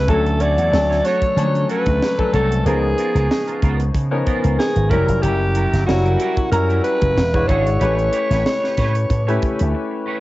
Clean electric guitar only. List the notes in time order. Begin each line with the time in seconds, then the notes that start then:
0.08 F#4 A4 C#5
0.25 muted clean electric guitar stroke
0.40 F#4 A4 C#5
0.57 F#4 A4 C#5
0.72 muted clean electric guitar stroke
0.89 F#4 A4 C#5
1.04 F#4 A4 C#5
1.22 muted clean electric guitar stroke
1.37 muted clean electric guitar stroke
1.55 muted clean electric guitar stroke
1.69 F#4 A4 C#5
1.87 muted clean electric guitar stroke
2.01 muted clean electric guitar stroke
2.19 muted clean electric guitar stroke
2.33 F#4 A4 C#5
2.51 muted clean electric guitar stroke
2.66 B3 F4 A#4
2.84 muted clean electric guitar stroke
2.98 B3 F4 A#4
3.15 B3 F4 A#4
3.30 muted clean electric guitar stroke
3.47 B3 F4 A#4
3.62 B3 F4 A#4
3.80 muted clean electric guitar stroke
3.95 muted clean electric guitar stroke
4.12 muted clean electric guitar stroke
4.26 B3 F4 A#4
4.43 B3 F4 A#4
4.58 muted clean electric guitar stroke
4.75 muted clean electric guitar stroke
4.89 E4 G4 A#4
5.07 muted clean electric guitar stroke
5.22 E4 G4 A#4
5.40 muted clean electric guitar stroke
5.55 E4 G4 A#4
5.72 E4 G4 A#4
5.88 muted clean electric guitar stroke
6.05 E4 G4 A#4
6.20 E4 G4 A#4
6.37 muted clean electric guitar stroke
6.51 muted clean electric guitar stroke
6.69 E4 G4 A#4
6.83 E4 G4 A#4
7.01 muted clean electric guitar stroke
7.16 muted clean electric guitar stroke
7.34 muted clean electric guitar stroke
7.48 D4 G#4 C#5
7.66 muted clean electric guitar stroke
7.80 G4 B4 C#5
7.97 muted clean electric guitar stroke
8.12 G4 B4 C#5
8.30 G4 B4 C#5
8.46 muted clean electric guitar stroke
8.63 G4 B4 C#5
8.77 G4 B4 C#5
8.95 muted clean electric guitar stroke
9.10 muted clean electric guitar stroke
9.27 G4 B4 C#5
9.42 muted clean electric guitar stroke
9.59 muted clean electric guitar stroke
9.74 muted clean electric guitar stroke
9.91 muted clean electric guitar stroke
10.06 G4 B4 C#5